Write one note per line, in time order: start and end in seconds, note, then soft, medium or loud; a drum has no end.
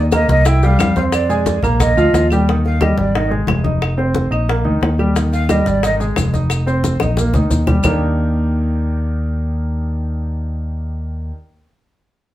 0.00 0.23 D#2 medium
0.12 0.40 A#3 medium
0.12 0.40 A#4 medium
0.12 0.29 D#5 medium
0.12 0.40 A#5 medium
0.12 high bongo medium
0.12 high conga medium
0.12 claves medium
0.12 maracas medium
0.28 0.75 C2 medium
0.28 0.47 D#5 medium
0.28 high conga medium
0.28 maracas soft
0.45 0.59 E4 medium
0.45 0.60 E5 medium
0.45 0.66 G5 loud
0.45 0.60 E6 medium
0.45 high bongo medium
0.45 maracas medium
0.62 0.91 G3 medium
0.62 0.91 G4 medium
0.62 0.96 F5 medium
0.62 0.91 G5 medium
0.62 high bongo soft
0.62 high conga soft
0.62 maracas soft
0.78 1.57 F2 medium
0.78 high bongo medium
0.78 low bongo medium
0.78 high conga medium
0.78 claves medium
0.78 maracas medium
0.96 1.24 C4 medium
0.96 1.24 C5 medium
0.96 1.03 F5 medium
0.96 1.24 C6 medium
0.96 high bongo soft
0.96 high conga medium
0.96 maracas soft
1.12 1.60 D5 medium
1.12 high bongo medium
1.12 high conga soft
1.12 claves medium
1.12 maracas medium
1.29 1.57 G#3 medium
1.29 1.57 G#4 medium
1.29 1.58 G#5 medium
1.29 high bongo soft
1.29 high conga soft
1.29 maracas soft
1.46 high bongo medium
1.46 high conga loud
1.46 maracas medium
1.63 1.94 A#1 medium
1.63 1.91 A#3 medium
1.63 1.91 A#4 medium
1.63 1.91 A#5 medium
1.63 high bongo soft
1.63 high conga soft
1.63 low conga medium
1.63 claves medium
1.63 maracas soft
1.80 2.27 D#5 medium
1.80 high bongo medium
1.80 high conga soft
1.80 low conga medium
1.80 maracas medium
1.96 2.12 D2 medium
1.96 2.25 F3 medium
1.96 2.25 F4 medium
1.96 2.25 F5 medium
1.96 high conga soft
1.96 maracas soft
2.13 2.91 D#2 medium
2.13 high bongo medium
2.13 low bongo medium
2.13 maracas medium
2.30 2.45 G3 medium
2.30 2.45 G4 medium
2.30 2.46 G5 medium
2.30 high bongo soft
2.30 high conga soft
2.30 claves medium
2.30 maracas soft
2.47 2.76 D#3 medium
2.47 2.76 D#4 medium
2.47 high bongo medium
2.47 high conga soft
2.65 2.84 F5 medium
2.65 high bongo soft
2.65 high conga soft
2.81 3.09 G3 medium
2.81 3.09 G4 medium
2.81 2.98 D#5 medium
2.81 high bongo medium
2.81 high conga medium
2.81 claves medium
2.97 3.44 G#1 medium
2.97 3.18 D5 medium
2.97 high conga medium
3.15 3.29 D#3 medium
3.15 3.29 D#4 medium
3.15 3.32 D#5 medium
3.15 high bongo medium
3.15 high conga soft
3.31 3.58 G#3 medium
3.31 3.59 G#4 medium
3.31 high bongo soft
3.31 high conga soft
3.47 4.25 F1 medium
3.47 high bongo medium
3.47 low bongo medium
3.47 high conga medium
3.47 claves medium
3.64 3.92 D#4 medium
3.64 3.92 D#5 medium
3.64 high bongo soft
3.64 high conga medium
3.82 high bongo medium
3.82 high conga soft
3.82 claves medium
3.97 4.25 C4 medium
3.97 4.25 C5 medium
3.97 high bongo soft
3.97 high conga soft
4.15 high bongo medium
4.15 high conga medium
4.31 4.62 A#1 medium
4.31 4.45 D#4 medium
4.31 4.45 D#5 medium
4.31 high bongo soft
4.31 high conga soft
4.31 claves medium
4.48 4.62 A#3 medium
4.48 4.62 A#4 medium
4.48 high bongo medium
4.48 high conga soft
4.64 4.81 D2 medium
4.64 4.92 D#3 medium
4.64 4.92 D#4 medium
4.64 high conga soft
4.81 5.60 D#2 medium
4.81 high bongo medium
4.81 low bongo medium
4.81 high conga soft
4.98 5.13 G3 medium
4.98 5.13 G4 medium
4.98 high bongo soft
4.98 high conga soft
4.98 claves medium
5.16 5.43 D#3 medium
5.16 5.44 D#4 medium
5.16 high bongo medium
5.16 high conga soft
5.16 maracas medium
5.33 5.52 F5 loud
5.33 high bongo soft
5.33 high conga soft
5.33 maracas soft
5.49 5.77 G3 medium
5.49 5.77 G4 medium
5.49 5.69 D#5 medium
5.49 high bongo medium
5.49 high conga medium
5.49 claves medium
5.49 maracas medium
5.66 6.12 G#1 medium
5.66 5.83 D5 medium
5.66 high conga medium
5.66 maracas soft
5.83 5.97 D#3 medium
5.83 5.97 D#4 medium
5.83 5.95 D#5 medium
5.83 high bongo medium
5.83 high conga soft
5.83 maracas medium
6.00 6.27 G#3 medium
6.00 6.27 G#4 medium
6.00 high bongo soft
6.00 high conga soft
6.00 maracas soft
6.16 6.94 F1 medium
6.16 high bongo medium
6.16 low bongo medium
6.16 high conga medium
6.16 claves medium
6.16 maracas medium
6.33 6.61 D#4 medium
6.33 6.61 D#5 medium
6.33 high bongo soft
6.33 high conga medium
6.33 maracas soft
6.50 high bongo medium
6.50 high conga soft
6.50 claves medium
6.50 maracas medium
6.66 6.94 C4 medium
6.66 6.94 C5 medium
6.66 high bongo soft
6.66 high conga soft
6.66 maracas soft
6.84 high bongo medium
6.84 high conga medium
6.84 maracas medium
7.00 7.32 A#1 medium
7.00 7.14 D#4 medium
7.00 7.15 D#5 medium
7.00 high bongo medium
7.00 high conga medium
7.00 claves medium
7.00 maracas soft
7.17 7.32 A#3 medium
7.17 7.32 A#4 medium
7.17 high bongo medium
7.17 high conga medium
7.17 maracas medium
7.33 7.49 D2 medium
7.33 7.62 D#3 medium
7.33 7.62 D#4 medium
7.33 low bongo medium
7.33 low conga medium
7.33 maracas soft
7.50 7.80 D#2 medium
7.50 low bongo medium
7.50 low conga medium
7.50 maracas medium
7.67 7.81 G3 medium
7.67 7.81 G4 medium
7.67 low bongo medium
7.67 low conga medium
7.67 claves medium
7.67 maracas soft
7.83 11.31 D#2 medium
7.83 11.31 D#3 medium
7.83 11.32 A#3 medium
7.83 11.32 D4 medium
7.83 11.32 D#4 medium
7.83 11.32 G4 medium
7.83 11.33 A#4 medium
7.83 low bongo medium
7.83 low conga medium
7.83 claves medium
7.83 maracas medium